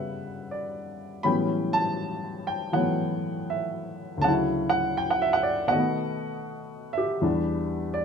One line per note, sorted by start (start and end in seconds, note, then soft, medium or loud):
0.00 1.24 G2 soft
0.00 1.26 C#3 soft
0.00 1.23 F#3 soft
0.00 1.24 G3 soft
0.00 1.26 A3 soft
0.00 1.25 B3 soft
0.00 1.21 B4 soft
0.00 0.53 E5 medium
0.00 1.27 F#5 medium
0.00 1.26 G5 medium
0.51 0.97 D5 medium
1.23 4.22 A2 soft
1.23 2.71 E3 soft
1.23 2.72 F#3 soft
1.23 4.23 G3 soft
1.23 2.74 B3 soft
1.23 4.23 C#4 medium
1.23 2.46 G5 medium
1.23 1.34 B5 medium
1.73 2.50 A5 medium
2.47 2.53 G5 medium
2.72 4.22 E3 soft
2.72 4.23 F#3 soft
2.72 4.23 A3 soft
2.72 4.23 B3 soft
2.72 4.19 C#5 soft
2.72 3.50 F#5 medium
3.50 3.95 E5 medium
4.17 5.69 D2 soft
4.21 5.71 C#3 soft
4.21 5.73 F#3 soft
4.21 4.68 F#5 medium
4.21 4.33 A5 medium
4.28 5.75 E4 medium
4.70 4.99 F#5 medium
4.97 5.10 G5 medium
5.11 5.23 F#5 medium
5.22 5.34 E5 medium
5.33 5.46 F#5 medium
5.43 5.49 D5 medium
5.67 7.20 B2 medium
5.67 7.22 D#3 soft
5.67 6.99 F#5 medium
5.72 7.24 A3 soft
5.72 7.18 D#5 medium
5.79 7.26 B3 medium
6.93 8.00 E5 medium
6.98 8.05 G4 medium
7.21 8.05 E2 medium
7.21 8.05 E3 soft
7.21 8.05 G3 soft
7.21 8.05 D4 medium
7.94 8.05 D5 medium